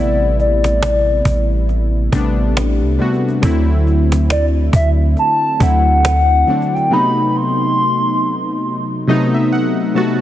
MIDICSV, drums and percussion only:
0, 0, Header, 1, 2, 480
1, 0, Start_track
1, 0, Tempo, 869565
1, 1893, Time_signature, 4, 2, 24, 8
1, 5636, End_track
2, 0, Start_track
2, 0, Title_t, "Cajon"
2, 218, Note_on_c, 9, 38, 37
2, 273, Note_off_c, 9, 38, 0
2, 354, Note_on_c, 9, 38, 67
2, 410, Note_off_c, 9, 38, 0
2, 456, Note_on_c, 9, 38, 104
2, 511, Note_off_c, 9, 38, 0
2, 691, Note_on_c, 9, 36, 83
2, 747, Note_off_c, 9, 36, 0
2, 933, Note_on_c, 9, 38, 35
2, 988, Note_off_c, 9, 38, 0
2, 1173, Note_on_c, 9, 36, 86
2, 1228, Note_off_c, 9, 36, 0
2, 1418, Note_on_c, 9, 38, 111
2, 1473, Note_off_c, 9, 38, 0
2, 1653, Note_on_c, 9, 38, 20
2, 1708, Note_off_c, 9, 38, 0
2, 1733, Note_on_c, 9, 38, 27
2, 1788, Note_off_c, 9, 38, 0
2, 1813, Note_on_c, 9, 38, 35
2, 1868, Note_off_c, 9, 38, 0
2, 1892, Note_on_c, 9, 36, 104
2, 1948, Note_off_c, 9, 36, 0
2, 2136, Note_on_c, 9, 38, 36
2, 2192, Note_off_c, 9, 38, 0
2, 2274, Note_on_c, 9, 38, 67
2, 2330, Note_off_c, 9, 38, 0
2, 2375, Note_on_c, 9, 38, 107
2, 2430, Note_off_c, 9, 38, 0
2, 2611, Note_on_c, 9, 36, 86
2, 2667, Note_off_c, 9, 36, 0
2, 2853, Note_on_c, 9, 38, 36
2, 2908, Note_off_c, 9, 38, 0
2, 3093, Note_on_c, 9, 36, 86
2, 3149, Note_off_c, 9, 36, 0
2, 3338, Note_on_c, 9, 38, 111
2, 3394, Note_off_c, 9, 38, 0
2, 3573, Note_on_c, 9, 38, 20
2, 3629, Note_off_c, 9, 38, 0
2, 3654, Note_on_c, 9, 38, 27
2, 3710, Note_off_c, 9, 38, 0
2, 3734, Note_on_c, 9, 38, 36
2, 3789, Note_off_c, 9, 38, 0
2, 5636, End_track
0, 0, End_of_file